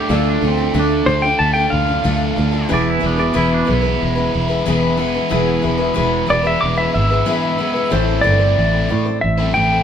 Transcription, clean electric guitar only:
0.00 G4
0.15 A4
0.30 D4
0.48 C4
0.80 D4
2.74 D5
2.90 E4
3.06 D4
3.20 D5
3.37 E4
3.54 D4
3.73 E4

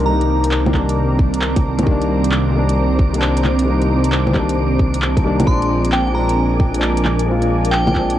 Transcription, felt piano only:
Already playing: D#3 G3 A#3 D4
0.03 D#3 G3
0.08 A#3 D#4
0.70 D#3 G3
0.75 A#3 D4
1.83 D#3 G3
1.88 A#3 D4
2.50 D#3 G3
2.55 A#3 D4
3.10 D#3 G3
3.15 A#3 D4
3.62 D#3 G3
3.67 A#3 D#4
4.31 D#3 G3
4.36 A#3 D4
5.22 D#3 G3 A#3
5.27 D4
5.43 F3 G#3
5.48 C4 D4
6.11 F3 G#3
6.16 C4 D4
6.71 F3 G#3
6.77 C4 D4
7.23 F3 G#3
7.28 C4 F4
7.91 F3 G#3
7.97 C4 D4

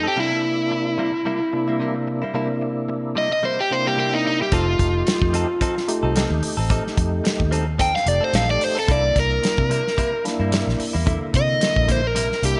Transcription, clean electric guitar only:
0.03 C4 D#4 A4
0.16 C3 G3 A#3 E4
0.31 muted clean electric guitar stroke
0.44 muted clean electric guitar stroke
0.71 muted clean electric guitar stroke
0.98 C3 G3 A#3 E4
1.13 muted clean electric guitar stroke
1.25 C3 G3 A#3 E4
1.41 muted clean electric guitar stroke
1.53 muted clean electric guitar stroke
1.68 G3 A#3 E4
1.80 C3 G3 A#3 E4
1.95 muted clean electric guitar stroke
2.07 muted clean electric guitar stroke
2.22 G3 A#3 E4
2.34 C3 G3 A#3 E4
2.49 muted clean electric guitar stroke
2.62 muted clean electric guitar stroke
2.89 muted clean electric guitar stroke
3.16 C3 G3 A#3 E4
3.31 muted clean electric guitar stroke
3.43 C3 G3 A#3 E4
3.58 muted clean electric guitar stroke
3.71 muted clean electric guitar stroke
3.85 G3 A#3 E4
3.97 C3 G3 A#3 E4
4.12 muted clean electric guitar stroke
4.25 muted clean electric guitar stroke
4.40 G3 A#3 E4
4.52 F3 C4 D#4 A4
4.67 muted clean electric guitar stroke
4.79 muted clean electric guitar stroke
5.07 muted clean electric guitar stroke
5.33 F3 C4 D#4 A4
5.48 muted clean electric guitar stroke
5.61 F3 C4 D#4 A4
5.76 muted clean electric guitar stroke
5.88 muted clean electric guitar stroke
6.03 C4 D#4 A4
6.15 F3 C4 D#4 A4
6.30 muted clean electric guitar stroke
6.43 muted clean electric guitar stroke
6.57 C4 D#4 A4
6.70 F3 C4 D#4 A4
6.85 muted clean electric guitar stroke
6.97 muted clean electric guitar stroke
7.24 muted clean electric guitar stroke
7.51 F3 C4 D#4 A4
7.67 muted clean electric guitar stroke
7.78 F3 C4 D#4 A4
7.94 muted clean electric guitar stroke
8.06 muted clean electric guitar stroke
8.21 C4 D#4 A4
8.33 F3 C4 D#4 A4
8.48 muted clean electric guitar stroke
8.61 muted clean electric guitar stroke
8.75 C4 D#4 A4
8.87 C3 G3 A#3 E4
9.03 muted clean electric guitar stroke
9.15 muted clean electric guitar stroke
9.43 muted clean electric guitar stroke
9.70 C3 G3 A#3 E4
9.85 muted clean electric guitar stroke
9.97 C3 G3 A#3 E4
10.13 muted clean electric guitar stroke
10.25 muted clean electric guitar stroke
10.40 G3 A#3 E4
10.51 C3 G3 A#3 E4
10.67 muted clean electric guitar stroke
10.79 muted clean electric guitar stroke
10.93 G3 A#3 E4
11.05 C3 G3 A#3 E4
11.21 muted clean electric guitar stroke
11.33 muted clean electric guitar stroke
11.61 muted clean electric guitar stroke
11.88 C3 G3 A#3 E4
12.03 muted clean electric guitar stroke
12.15 C3 G3 A#3 E4
12.30 muted clean electric guitar stroke
12.43 muted clean electric guitar stroke

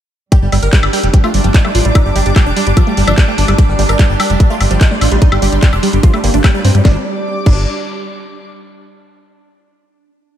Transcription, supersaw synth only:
0.32 G4
0.42 G3
0.52 G3
0.63 A#4
0.73 G3
0.83 G3
0.93 G4
1.03 G3
1.14 G3
1.24 F4
1.34 G3
1.44 G3
1.54 D#4
1.65 G3
1.75 F4
1.85 G3
1.95 D#4
2.05 G3
2.16 G4
2.26 G3
2.36 G3
2.46 D4
2.56 G3
2.67 G3
2.77 F4
2.87 G3
2.97 G3
3.07 D4
3.18 G3
3.28 G3
3.38 D4
3.48 G3
3.59 G4
3.69 G3
3.79 G3
3.89 A#4
3.99 G3
4.10 G3
4.20 G4
4.30 G3
4.40 G3
4.50 F4
4.61 G3
4.71 G3
4.81 D#4
4.91 G3
5.01 F4
5.11 G3
5.22 D#4
5.32 G3
5.42 G4
5.52 G3
5.62 G3
5.73 D4
5.83 G3
5.93 G3
6.03 F4
6.14 G3
6.24 G3
6.34 D4
6.44 G3
6.54 G3
6.65 C4
6.75 G3
6.85 D4
7.46 D4

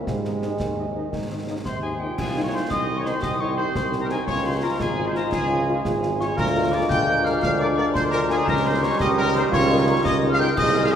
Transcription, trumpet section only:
0.26 D#5
0.42 D#5
0.78 D#5
0.96 D#5
1.31 D#5
1.49 D#5
1.65 C5
1.83 G#4 D#5
2.02 G4 D#5
2.19 G#4
2.46 C#5
2.54 C5
2.71 D#5
2.99 C#5
3.07 C5
3.24 D#5
3.41 C#5
3.57 C5
3.75 C5
4.02 A#4
4.09 G#4
4.26 C#5
4.44 C5
4.62 A#4
4.80 G#4
5.07 C5
5.15 A#4
5.32 G#4
6.21 C#5
6.37 A#4
6.72 D5
6.89 G5
7.24 F5
7.41 F5
7.59 D5
7.77 D5
7.94 C5
8.11 A#4
8.31 G#4
8.47 A#4
8.65 C5
8.82 C#5
9.00 D#5
9.18 A#4
9.35 C5
9.52 C#5
10.05 D#5
10.32 F5
10.39 G5
10.57 D#5
10.84 F5
10.90 D#5

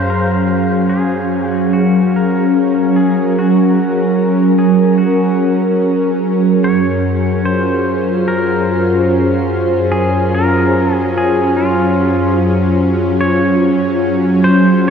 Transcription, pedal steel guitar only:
0.10 A#4
0.90 G#4
1.50 F#4
1.73 F#4
2.16 A#4
2.96 G#4
3.39 F#4
4.59 G#4
4.98 F#4
6.64 C#5
7.45 C5
8.28 A#4
9.92 G#4
10.35 A#4
10.95 G#4
11.18 G#4
11.57 F4
13.21 C#5
14.44 C5

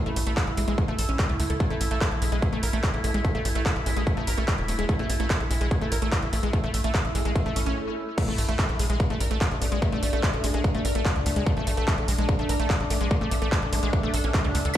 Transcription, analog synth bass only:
0.06 A1
0.16 A1
0.27 A1
0.47 A1
0.57 A1
0.68 A1
0.88 A1
0.99 A1
1.09 A1
1.29 C#2
1.40 C#2
1.50 C#2
1.70 A1
1.81 A1
1.91 A1
2.12 A#1
2.22 A#1
2.32 A#1
2.53 A1
2.63 A1
2.73 A1
2.94 A1
3.04 A1
3.14 A1
3.35 A1
3.45 A1
3.55 A1
3.76 A1
3.86 A1
3.96 A1
4.17 A1
4.27 A1
4.38 A1
4.58 E1
4.68 E1
4.79 E1
4.99 A1
5.10 A1
5.20 A1
5.40 A#1
5.51 A#1
5.61 A#1
5.81 A1
5.92 A1
6.02 A1
6.23 A1
6.33 A1
6.43 A1
6.64 A1
6.74 A1
6.84 A1
7.05 A1
7.15 A1
7.25 A1
7.46 A1
7.56 A1
7.66 A1
8.28 A1
8.38 A1
8.49 A1
8.69 A#1
8.79 A#1
8.90 A#1
9.10 A1
9.20 A1
9.31 A1
9.51 A1
9.62 A1
9.72 A1
9.92 A1
10.03 A1
10.13 A1
10.33 A1
10.44 A1
10.54 A1
10.75 A1
10.85 A1
10.95 A1
11.16 C#2
11.26 C#2
11.36 C#2
11.57 A1
11.67 A1
11.77 A1
11.98 A#1
12.08 A#1
12.18 A#1
12.39 A1
12.49 A1
12.59 A1
12.80 A1
12.90 A1
13.01 A1
13.21 A1
13.31 A1
13.42 A1
13.62 A1
13.73 A1
13.83 A1
14.03 A1
14.14 A1
14.24 A1
14.44 C#2
14.55 C#2
14.65 C#2

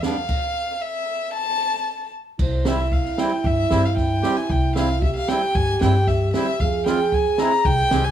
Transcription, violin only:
0.02 F5
0.81 E5
1.34 A5
2.42 C5
2.68 E5
2.93 F5
3.19 G5
3.46 E5
3.85 F5
3.98 G5
4.37 G#5
4.51 G5
4.76 F5
5.04 E5
5.16 F5
5.29 G5
5.55 G#5
5.82 G5
6.08 E5
6.34 E5
6.60 F5
6.87 G5
7.14 G#5
7.39 A#5
7.65 G5
8.04 G#5

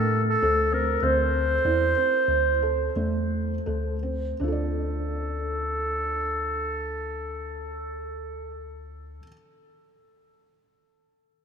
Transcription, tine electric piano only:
Already playing: A2
0.43 D2
1.03 D2
1.65 E2
2.29 D2
2.97 E2
3.67 D2
4.40 D2

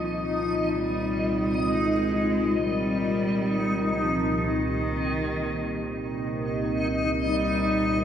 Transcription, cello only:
Already playing: F3
0.31 F3
0.77 G3
1.70 G#3
2.62 G3
4.02 F3
4.47 D#3
7.24 G3

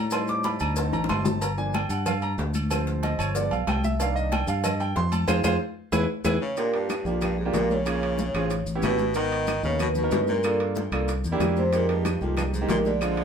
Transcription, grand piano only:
Already playing: A#5
0.11 G3 C4 D#4 C6
0.29 D6
0.45 B5
0.61 A#5
0.77 F#3 C4 D#4 A5
0.93 A#5
1.09 C6
1.25 A5
1.41 A#5
1.57 F3 A#3 D4 G#5
1.75 G5
1.90 F#5
2.07 F5
2.23 A#5
2.70 F3 G#3 C4
3.04 D#5
3.19 C#5
3.35 F3 G#3 B3 D5
3.52 F5
3.68 G5
3.85 E5
4.00 D#3 A#3 D4 F5
4.15 D#5
4.32 G5
4.49 F5
4.65 D#5
4.80 G5
4.97 C6
5.13 A5
5.28 F4 G#4 C5
5.44 F4 G#4 C5
5.92 E4 G#4 B4
6.25 E4 G#4 B4
6.57 A#3 D4 F4 G4
7.06 A#3 D4 F4 G4
7.45 A#3 D4 F4 G4
7.86 A#3 C#4 F4 G#4
8.36 C4 C#4 F4 G#4
8.75 B3 C#4 E4 G4
9.15 B3 D#4 F#4 A#4
9.64 B3 D#4 F#4 A#4
10.03 B3 D#4 F#4 A#4
10.44 A#3 D4 F4 A4
10.93 A#3 D4 F4 A4
11.32 A#3 D4 E4 G4
11.73 G#3 A#3 D#4 G4
12.21 G#3 A#3 D#4 G4
12.61 G#3 A#3 D#4 G4
13.02 G#3 C4 D4 F4

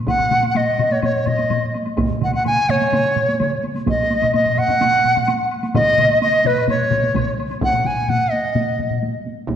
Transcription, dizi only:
0.08 F#5
0.50 F#5
0.57 D#5
0.92 C#5
1.04 C#5
1.28 D#5
2.24 F#5
2.35 F#5
2.47 G#5
2.70 C#5
3.90 D#5
4.34 D#5
4.58 F#5
5.75 D#5
6.22 D#5
6.46 B4
6.70 C#5
7.64 F#5
7.87 G#5
8.09 F#5
8.31 D#5

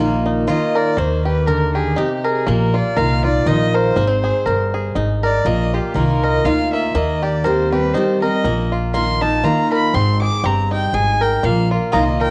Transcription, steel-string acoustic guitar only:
Already playing: A#2 D#3
0.00 A#3 D#4 F4
0.47 D#3 A#3 D#4 F4
0.98 D#3
1.48 D3
1.98 C3
2.48 A#2
2.96 D#3 A#3 D#4 F4
3.24 D#4 F4
3.46 D#3 A#3 D#4 F4
3.97 G#2
4.47 G2
4.96 G#2
5.46 A#2
5.94 D#3 A#3 D#4 F4
6.45 A#3 D#4 F4
6.95 D#3
7.44 D#3 G3 C4
7.72 G3 C4
7.95 D#3 G3 C4
8.23 G3 C4
8.45 A#2
8.94 D#3 A#3 D#4 F4
9.22 D#4 F4
9.44 D#3 A#3 D#4 F4
9.94 G#2
10.44 G2
10.94 G#2
11.44 A#2
11.93 D#3 A#3 D#4 F4

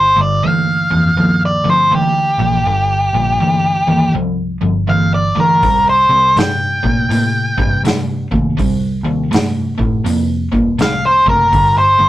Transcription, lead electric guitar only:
Already playing: C5
0.21 D5
0.47 F5
1.45 D5
1.70 C5
1.95 G4
4.89 F5
5.14 D5
5.40 A#4
5.89 C5
6.39 G5
10.82 F5
11.06 C5
11.29 A#4
11.78 C5

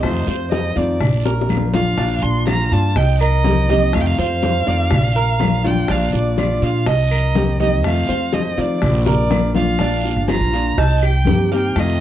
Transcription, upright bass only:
0.03 F2
0.27 F2
0.76 F2
1.00 A#1
1.98 A#1
2.23 A#1
2.72 G2
2.96 C2
3.94 F2
4.18 F2
4.67 F2
4.91 A#1
5.89 A#1
6.13 A#1
6.62 A#2
6.86 C2
7.84 F2
8.08 F2
8.58 F3
8.82 A#1
9.79 A#1
10.16 G1
10.40 A#1
10.78 C2
11.27 G2
11.76 F2

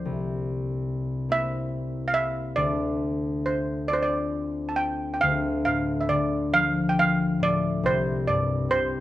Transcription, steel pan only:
Already playing: C5
1.32 E5
2.08 F5
2.14 E5
2.56 D5
3.46 C5
3.88 D5
3.93 C5
4.03 D5
4.69 A5
4.76 G5
5.14 G5
5.21 F5
5.65 F5
6.01 E5
6.09 D5
6.54 F5
6.89 G5
6.99 F5
7.43 D5
7.86 C5
8.28 D5
8.71 C5

